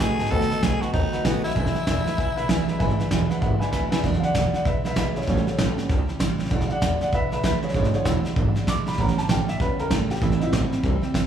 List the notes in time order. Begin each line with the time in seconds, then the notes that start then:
0.00 A2 B2 D#3 A3 B3 F#4 G#4 B4 D#5 G#5, kick
0.19 G#2 A3 B3 F#4 B4 D#5 A5, snare
0.25 snare
0.30 D#2 B2 D#3 A3 B3 F#4 A4 B4 D#5 F#5, kick, snare
0.41 snare
0.49 A3 B3 F#4 B4 D#5 F#5, muted upright bass stroke, snare
0.61 B1 B2 D#3 A3 B3 F#4 G#4 B4, kick, snare, hi-hat pedal
0.80 A3 B3 F#4 B4 D#5 A5, muted upright bass stroke, snare
0.92 D#2 D#3 A3 B3 D#4 F#4 B4 D#5 F#5, kick, snare
1.12 A3 B3 F#4 B4 D#5 F#5, muted upright bass stroke, snare
1.23 A1 B2 D#3 A3 B3 F#4 B4 D#5 G#5, kick, snare, hi-hat pedal
1.43 B1 A3 B3 E4 F#4 B4 D#5 F#5, snare
1.50 snare
1.56 E1 E2 B2 E3 G#3 D4 E4 B4 E5 G#5, kick, snare
1.66 snare
1.74 E3 G#3 D4 E4 B4 E5, muted upright bass stroke, snare
1.86 E1 E2 B2 E3 G#3 D4 E4 B4 E5 G#5, kick, snare, hi-hat pedal
2.05 E3 G#3 D4 E4 B4 E5 B5, muted upright bass stroke, snare
2.17 B1 E3 G#3 D4 E4 B4 E5 G#5, kick, snare
2.36 B1 E3 G#3 D4 E4 B4 E5 B5, snare
2.48 D2 E2 B2 E3 G#3 D4 E4 B4 E5 G#5, kick, snare, hi-hat pedal
2.67 C#2 E3 G#3 D4 E4 B4 E5 B5, snare
2.79 G#1 E2 B2 E3 G#3 D4 E4 B4 E5 G#5, kick, snare
2.89 snare
2.98 E3 G#3 D4 E4 B4 E5 G#5, muted upright bass stroke, snare
3.10 E1 E2 B2 E3 G#3 D4 E4 B4 E5 G#5, kick, snare, hi-hat pedal
3.29 E3 G#3 D4 E4 B4 E5 F#5, muted upright bass stroke, snare
3.41 G#1 E3 G#3 D4 E4 B4 E5 F#5, kick, snare
3.59 E3 G#3 D4 E4 B4 E5 G#5, muted upright bass stroke, snare
3.71 D2 E2 B2 E3 G#3 D4 E4 B4 E5 G#5, kick, snare, hi-hat pedal
3.90 E1 E3 G#3 D4 E4 B4 E5 G#5, snare
4.02 E1 E2 B2 E3 F#3 G#3 D4 E4, kick, snare
4.14 snare
4.20 D4 E4 F5, muted upright bass stroke, snare
4.24 E3 G#3 D5 F#5
4.34 E1 E2 B2 E3 G#3 D4 E4 D5 F#5, kick, snare, hi-hat pedal
4.52 E3 G#3 D4 E4 D5 F#5, muted upright bass stroke, snare
4.65 B1 E3 G#3 D4 E4 B4 E5, kick, snare
4.84 B1 E3 G#3 D4 E4 B4 E5, snare
4.95 D2 E2 B2 E3 G#3 D4 E4 B4 E5, kick, snare, hi-hat pedal
5.15 B1 E3 G#3 D4 E4 G#4 C#5, snare
5.22 snare
5.26 A1 A2 E3 G3 B3 C#4 E4 A4 C#5, kick, snare
5.37 snare
5.45 G3 C#4 E4 A4 C#5, muted upright bass stroke, snare
5.57 A1 A2 E3 G3 C#4 E4 A4, kick, snare, hi-hat pedal
5.76 G3 B3 C#4 E4, muted upright bass stroke, snare
5.88 C#2 E3 G3 C#4 E4, kick, snare
6.07 G3 C#4 E4, muted upright bass stroke, snare
6.19 G1 A2 E3 G3 C#4 E4, kick, snare, hi-hat pedal
6.38 A1 G3 C#4 E4, snare
6.45 snare
6.50 E1 E2 B2 E3 F#3 G#3 D4 E4, kick, snare
6.61 snare
6.67 E3 G#3 D4 E4 F5, muted upright bass stroke, snare
6.71 D5 F#5
6.81 E1 E2 B2 E3 G#3 D4 E4 D5, kick, snare, hi-hat pedal
7.00 E3 G#3 D4 E4 D5 F#5, muted upright bass stroke, snare
7.11 B1 E3 G#3 D4 E4 B4 E5, kick, snare
7.30 B1 E3 G#3 D4 E4 B4 E5, snare
7.42 D2 E2 B2 E3 G#3 D4 E4 B4 E5, kick, snare, hi-hat pedal
7.62 C#2 E3 G#3 D4 E4 G#4 C#5, snare
7.69 snare
7.73 G#1 E2 B2 E3 G#3 D4 E4 G#4 C#5, kick, snare
7.84 snare
7.92 E3 F#3 G#3 D4 E4 G#4 C#5, muted upright bass stroke, snare
8.04 E1 E2 B2 E3 G#3 D4 E4, kick, snare, hi-hat pedal
8.24 E3 G#3 D4 E4, muted upright bass stroke, snare
8.36 G#1 E3 G#3 D4 E4, kick, snare
8.55 E3 F#3 G#3 D4 E4, muted upright bass stroke, snare
8.67 E2 B2 E3 G#3 D4 E4 D6, kick, snare, hi-hat pedal
8.86 B1 E3 G#3 D4 E4 B5, snare
8.93 snare
8.97 A1 A2 E3 G3 B3 C#4 E4 A#5, kick, snare
9.08 snare
9.17 G3 C#4 E4 A5, muted upright bass stroke, snare
9.28 A1 A2 E3 G3 C#4 E4 G5, kick, snare, hi-hat pedal
9.48 G3 C#4 E4 E5, muted upright bass stroke, snare
9.59 E2 E3 G3 B3 C#4 E4 B4, kick, snare
9.78 E2 G3 C#4 E4 A#4, snare
9.90 G2 A2 E3 G3 C#4 E4 A4, kick, snare, hi-hat pedal
10.10 F#2 G3 C#4 E4 G4, snare
10.16 snare
10.21 A1 A2 E3 G3 C4 E4, kick, snare
10.31 snare
10.38 G3 B3 C4 D#4 E4, muted upright bass stroke, snare
10.43 E4
10.52 A1 A2 E3 G3 C4 E4, kick, snare, hi-hat pedal
10.71 G3 C4 E4, muted upright bass stroke, snare
10.83 C2 E3 G3 C4 E4, kick, snare
11.02 G3 C4 E4, muted upright bass stroke, snare
11.14 G1 A2 E3 G3 C4 E4, kick, snare, hi-hat pedal